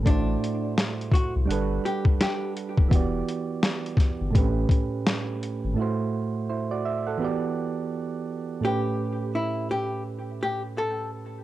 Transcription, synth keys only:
0.03 1.44 A2 medium
0.03 1.45 A3 medium
0.03 1.46 E4 soft
0.08 1.47 F#4 medium
0.08 1.48 C5 medium
1.46 2.87 G3 medium
1.46 2.88 D4 medium
1.46 2.89 F#5 medium
1.51 2.90 A4 medium
1.51 2.91 B4 medium
2.88 4.30 E3 medium
2.88 4.31 B3 medium
2.88 4.31 F#4 medium
2.94 4.32 G4 medium
2.94 4.33 D5 medium
4.30 5.72 A2 medium
4.30 5.73 A3 medium
4.30 4.42 C4 medium
4.36 5.75 G4 medium
4.36 5.76 B4 medium
4.41 5.77 C#4 medium
5.74 7.15 A2 medium
5.74 7.16 A3 medium
5.74 6.47 E4 medium
5.79 6.48 F#4 medium
5.79 6.48 C5 medium
6.49 6.70 E4 medium
6.49 6.70 C5 medium
6.71 6.84 F#4 medium
6.71 6.84 D5 medium
6.85 7.05 E5 medium
7.07 7.41 A4 soft
7.07 7.40 F#5 medium
7.18 8.59 E3 medium
7.18 8.60 B3 medium
7.18 8.60 F#4 medium
7.23 8.61 G4 medium
7.23 8.62 D5 medium
8.60 11.43 A2 medium
8.60 11.44 A3 medium
8.60 11.44 C#4 medium
8.66 11.44 G4 medium
8.66 11.44 B4 medium

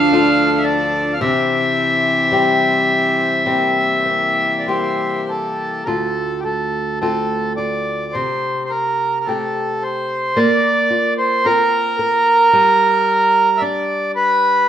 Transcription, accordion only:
0.00 0.63 F5 loud
0.58 0.65 E5 medium
0.64 1.14 D5 medium
1.13 1.20 F5 medium
1.21 5.25 E5 medium
4.59 4.67 D5 soft
4.68 5.31 C5 medium
5.29 5.84 A4 medium
5.84 6.40 A4 medium
5.84 5.87 A#4 soft
6.40 6.44 G4 soft
6.45 6.99 A4 medium
7.01 7.53 A4 medium
7.57 8.15 D5 medium
8.13 8.63 C5 medium
8.65 8.71 C5 soft
8.70 9.19 A#4 medium
9.20 9.27 A#4 soft
9.25 9.83 A4 medium
9.82 10.39 C5 medium
10.36 11.14 D5 medium
11.18 11.46 C5 medium
11.45 13.61 A#4 medium
13.57 14.12 D5 medium
13.57 13.63 E5 medium
14.16 14.69 B4 medium

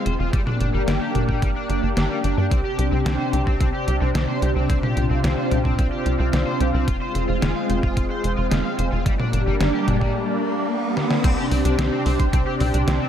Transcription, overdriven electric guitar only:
0.06 0.13 C5 medium
0.20 0.30 F4 medium
0.33 0.40 G3 medium
0.47 0.57 D4 medium
0.61 0.67 D4 medium
0.74 0.81 G3 loud
0.88 0.95 G3 medium
1.01 1.12 G4 medium
1.15 1.22 D4 medium
1.29 1.39 G3 medium
1.42 1.49 G3 medium
1.56 1.66 D4 medium
1.70 1.80 D4 medium
1.83 1.87 D4 loud
1.97 2.07 D4 medium
2.10 2.17 G3 medium
2.24 2.34 D4 medium
2.38 2.45 D4 medium
2.51 2.58 C4 medium
2.65 2.75 G4 medium
2.79 2.85 G4 medium
2.92 2.99 C4 loud
3.06 3.13 C4 loud
3.20 3.30 C5 medium
3.33 3.40 G4 medium
3.47 3.57 C4 medium
3.61 3.67 C4 medium
3.74 3.84 G4 medium
3.88 3.95 G4 medium
4.01 4.08 C4 loud
4.15 4.22 C4 loud
4.29 4.39 C5 medium
4.42 4.49 G4 medium
4.56 4.66 C4 medium
4.70 4.76 C4 medium
4.83 4.93 G4 medium
4.97 5.04 G4 medium
5.11 5.17 C4 loud
5.24 5.31 C4 medium
5.38 5.48 C5 medium
5.51 5.58 G4 medium
5.65 5.75 C4 medium
5.79 5.86 C4 medium
5.92 6.03 G4 medium
6.06 6.13 G4 medium
6.20 6.27 C4 loud
6.33 6.40 C4 loud
6.47 6.57 C5 medium
6.61 6.67 G4 medium
6.74 6.84 C4 medium
6.88 6.95 F4 medium
7.02 7.12 C5 medium
7.15 7.22 C5 medium
7.29 7.36 F4 loud
7.42 7.49 F4 loud
7.56 7.66 F5 medium
7.70 7.76 C5 medium
7.83 7.94 F4 medium
7.97 8.04 F4 medium
8.10 8.21 C5 medium
8.24 8.31 C5 medium
8.38 8.45 F4 loud
8.51 8.58 F4 loud
8.65 8.75 F5 medium
8.79 8.86 C5 medium
8.92 9.03 F4 medium
9.06 9.13 G3 medium
9.20 9.30 D4 medium
9.33 9.40 D4 medium
9.47 9.54 G3 loud
9.61 9.67 G3 loud
9.74 9.84 G4 medium
9.88 9.95 D4 medium
10.02 10.12 G3 medium
11.24 11.31 C4 medium
11.38 11.45 G4 loud
11.51 11.58 C4 medium
11.65 11.72 D4 medium
11.79 11.83 C4 medium
11.92 12.03 C4 medium
12.06 12.16 C4 medium
12.20 12.24 C5 medium
12.33 12.40 C4 medium
12.47 12.54 G4 loud
12.61 12.67 C4 medium
12.74 12.81 D4 medium
12.88 12.92 C4 medium
13.01 13.09 C4 medium

